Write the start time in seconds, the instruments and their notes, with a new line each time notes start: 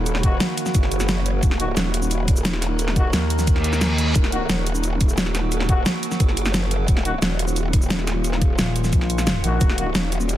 Already playing: wobble bass D#1, synth drone D#3 A#3 F#4
0.06 closed hi-hat, shaker
0.15 snare
0.23 brass ensemble A#3 D#4 F#4, kick, closed hi-hat
0.40 snare, closed hi-hat, shaker
0.58 closed hi-hat, shaker
0.66 snare, shaker
0.74 wobble bass F#1, kick, closed hi-hat, shaker
0.83 snare
0.92 closed hi-hat, shaker
1.00 snare, shaker
1.09 snare, closed hi-hat, shaker
1.26 closed hi-hat, shaker
1.43 wobble bass D#1, synth drone A#4, kick, closed hi-hat, shaker
1.51 snare
1.60 brass ensemble A#3 D#4 F#4, closed hi-hat
1.77 wobble bass D#1, snare, closed hi-hat, shaker
1.94 closed hi-hat, shaker
2.02 shaker
2.11 closed hi-hat, shaker
2.28 kick, closed hi-hat, shaker
2.36 shaker
2.45 snare, closed hi-hat, shaker
2.53 snare
2.62 snare, closed hi-hat, shaker
2.79 closed hi-hat, shaker
2.88 snare
2.96 brass ensemble A#3 D#4 F#4, kick, closed hi-hat, shaker
3.13 fm bass D#2, snare, closed hi-hat, shaker
3.30 closed hi-hat, shaker
3.39 snare, shaker
3.47 kick, closed hi-hat, reverse cymbal, shaker
3.56 snare
3.64 closed hi-hat, shaker
3.73 snare, shaker
3.81 snare, closed hi-hat, shaker
3.98 closed hi-hat, shaker
4.15 wobble bass D#1, synth drone F#4, kick, closed hi-hat, shaker
4.24 snare
4.32 brass ensemble A#3 D#4 F#4, closed hi-hat
4.49 wobble bass D#1, snare, closed hi-hat, shaker
4.67 closed hi-hat, shaker
4.75 shaker
4.84 closed hi-hat, shaker
5.01 kick, closed hi-hat, shaker
5.09 shaker
5.18 snare, closed hi-hat, shaker
5.26 snare
5.35 snare, closed hi-hat, shaker
5.52 closed hi-hat, shaker
5.60 snare
5.69 brass ensemble A#3 D#4 F#4, kick, closed hi-hat
5.86 snare, closed hi-hat, shaker
6.03 closed hi-hat, shaker
6.12 snare, shaker
6.20 wobble bass F#1, kick, closed hi-hat, shaker
6.29 snare
6.37 closed hi-hat, shaker
6.46 snare, shaker
6.54 snare, closed hi-hat, shaker
6.71 closed hi-hat, shaker
6.88 wobble bass D#1, synth drone F4, kick, closed hi-hat, shaker
6.97 snare
7.05 brass ensemble A#3 D#4 F#4, closed hi-hat
7.22 wobble bass D#1, snare, closed hi-hat, shaker
7.39 closed hi-hat, shaker
7.48 shaker
7.56 closed hi-hat, shaker
7.73 kick, closed hi-hat, shaker
7.82 shaker
7.90 snare, closed hi-hat, shaker
7.99 snare
8.07 snare, closed hi-hat, shaker
8.24 closed hi-hat, shaker
8.33 snare
8.42 kick, closed hi-hat
8.59 fm bass D#1, snare, closed hi-hat, shaker
8.76 closed hi-hat, shaker
8.84 snare, shaker
8.93 fm bass A#1, kick, closed hi-hat, shaker
9.01 snare
9.10 closed hi-hat, shaker
9.18 snare, shaker
9.27 snare, closed hi-hat, shaker
9.44 fm bass A#1, brass ensemble A#3 D#4 F#4, closed hi-hat, shaker
9.61 wobble bass D#1, synth drone F#4, kick, closed hi-hat, shaker
9.70 snare
9.78 brass ensemble A#3 D#4 F#4, closed hi-hat
9.95 wobble bass D#1, snare, closed hi-hat, shaker
10.12 closed hi-hat, shaker
10.21 shaker
10.29 closed hi-hat, shaker